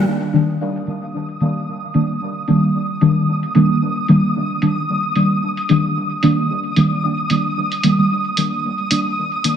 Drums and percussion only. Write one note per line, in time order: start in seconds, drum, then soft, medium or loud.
0.33 open hi-hat medium
0.87 open hi-hat medium
1.29 open hi-hat soft
1.41 open hi-hat medium
1.94 open hi-hat medium
2.48 open hi-hat medium
3.01 open hi-hat medium
3.43 open hi-hat soft
3.55 open hi-hat medium
4.08 open hi-hat medium
4.62 open hi-hat medium
5.16 open hi-hat medium
5.57 open hi-hat soft
5.69 open hi-hat medium
6.23 open hi-hat medium
6.76 open hi-hat medium
7.30 open hi-hat medium
7.72 open hi-hat soft
7.83 open hi-hat medium
8.37 open hi-hat medium
8.91 open hi-hat medium
9.44 open hi-hat medium